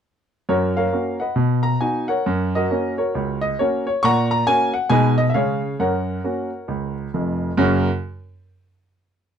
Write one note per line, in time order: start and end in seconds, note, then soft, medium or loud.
0.49 0.86 F#2 medium
0.49 0.75 F#4 medium
0.49 0.75 A#4 medium
0.49 0.72 C#5 medium
0.77 1.18 A#4 medium
0.77 1.18 C#5 soft
0.77 1.14 F5 medium
0.92 1.17 A#3 soft
0.92 1.18 C#4 soft
0.92 1.18 F#4 soft
1.20 1.62 B4 soft
1.20 1.62 D#5 soft
1.20 1.58 F#5 medium
1.36 1.74 B2 medium
1.63 1.78 A#5 medium
1.81 2.05 B3 soft
1.81 2.06 D#4 soft
1.81 2.06 F#4 soft
1.81 2.05 G#5 medium
2.08 2.51 A#4 soft
2.08 2.51 C#5 medium
2.08 2.46 F#5 medium
2.26 2.64 F#2 medium
2.55 2.70 F#4 medium
2.55 2.96 A#4 medium
2.55 2.92 D#5 medium
2.70 2.95 A#3 medium
2.70 2.95 C#4 medium
2.70 2.95 F#4 medium
2.98 3.40 F#4 soft
2.98 3.40 A#4 soft
2.98 3.36 C#5 medium
3.15 3.53 C#2 medium
3.41 3.56 D#5 medium
3.59 3.84 A#3 soft
3.59 3.85 C#4 medium
3.59 3.86 F#4 medium
3.59 3.86 A#4 medium
3.59 3.83 C#5 medium
3.87 4.01 C#5 medium
4.03 4.42 A#2 medium
4.03 4.30 F#5 medium
4.03 4.29 A#5 medium
4.03 4.27 C#6 loud
4.31 4.45 A#5 medium
4.47 4.72 A#3 medium
4.47 4.72 C#4 medium
4.47 4.72 F#4 medium
4.47 4.71 G#5 loud
4.74 4.89 F#5 medium
4.90 5.29 B2 medium
4.90 5.15 G#3 medium
4.90 5.16 D#4 medium
4.90 5.16 G#4 soft
4.90 5.18 B4 medium
4.90 5.16 D#5 medium
4.90 5.14 G#5 medium
5.18 5.28 D#5 medium
5.30 5.36 E5 medium
5.34 5.73 C#3 medium
5.34 5.60 G#3 soft
5.34 5.60 C#4 soft
5.34 5.77 G#4 medium
5.34 5.77 C#5 medium
5.34 5.73 F5 medium
5.80 6.18 F#2 medium
5.80 7.10 A#4 medium
5.80 7.10 C#5 medium
5.80 6.93 F#5 medium
6.24 6.49 A#3 soft
6.24 6.49 C#4 soft
6.24 6.49 F#4 soft
6.68 7.06 C#2 medium
7.14 7.49 F1 medium
7.14 7.49 F2 medium
7.57 7.87 F#2 loud
7.57 7.87 C#3 medium
7.57 7.87 A#3 medium
7.57 7.87 C#4 medium
7.57 7.87 F#4 medium
7.57 7.87 A#4 medium